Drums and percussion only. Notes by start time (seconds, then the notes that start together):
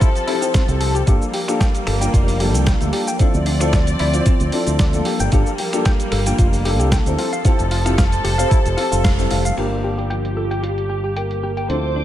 0.01 kick, closed hi-hat, shaker
0.15 closed hi-hat, shaker
0.28 open hi-hat
0.42 closed hi-hat, shaker
0.54 kick, snare, closed hi-hat, shaker
0.68 closed hi-hat, shaker
0.81 open hi-hat
0.95 closed hi-hat, shaker
1.07 kick, closed hi-hat, shaker
1.22 shaker
1.34 open hi-hat
1.48 finger snap, closed hi-hat, shaker
1.61 kick, snare, closed hi-hat, shaker
1.75 closed hi-hat, shaker
1.87 finger snap, open hi-hat
2.01 closed hi-hat, shaker
2.14 kick, closed hi-hat, shaker
2.28 open hi-hat, shaker
2.40 open hi-hat
2.55 closed hi-hat, shaker
2.66 kick, snare, closed hi-hat, shaker
2.81 closed hi-hat, shaker
2.93 open hi-hat
3.07 closed hi-hat, shaker
3.19 kick, closed hi-hat, shaker
3.34 shaker
3.46 open hi-hat
3.61 finger snap, closed hi-hat, shaker
3.73 kick, snare, closed hi-hat, shaker
3.87 closed hi-hat, shaker
3.99 open hi-hat
4.13 closed hi-hat, shaker
4.26 kick, closed hi-hat, shaker
4.40 closed hi-hat, shaker
4.52 open hi-hat
4.67 closed hi-hat, shaker
4.79 kick, snare, closed hi-hat, shaker
4.93 closed hi-hat, shaker
5.05 open hi-hat
5.20 closed hi-hat, shaker
5.32 kick, closed hi-hat, shaker
5.46 shaker
5.58 open hi-hat
5.73 finger snap, closed hi-hat, shaker
5.85 kick, snare, closed hi-hat, shaker
6.00 closed hi-hat, shaker
6.12 finger snap, open hi-hat
6.26 closed hi-hat, shaker
6.38 kick, closed hi-hat, shaker
6.53 open hi-hat, shaker
6.65 open hi-hat
6.80 closed hi-hat, shaker
6.92 kick, snare, closed hi-hat, shaker
7.06 closed hi-hat, shaker
7.19 open hi-hat
7.33 closed hi-hat, shaker
7.45 kick, closed hi-hat, shaker
7.59 closed hi-hat, shaker
7.71 open hi-hat
7.86 finger snap, closed hi-hat, shaker
7.98 kick, snare, closed hi-hat, shaker
8.12 closed hi-hat, shaker
8.25 open hi-hat
8.39 closed hi-hat, shaker
8.51 kick, closed hi-hat, shaker
8.66 closed hi-hat, shaker
8.78 open hi-hat
8.92 closed hi-hat, shaker
9.04 kick, snare, closed hi-hat, shaker
9.19 closed hi-hat, shaker
9.31 open hi-hat
9.45 closed hi-hat, shaker
9.57 closed hi-hat, crash
9.99 closed hi-hat
10.11 closed hi-hat
10.25 closed hi-hat
10.51 closed hi-hat
10.64 closed hi-hat
10.78 closed hi-hat
11.16 closed hi-hat
11.31 closed hi-hat
11.57 closed hi-hat
11.70 closed hi-hat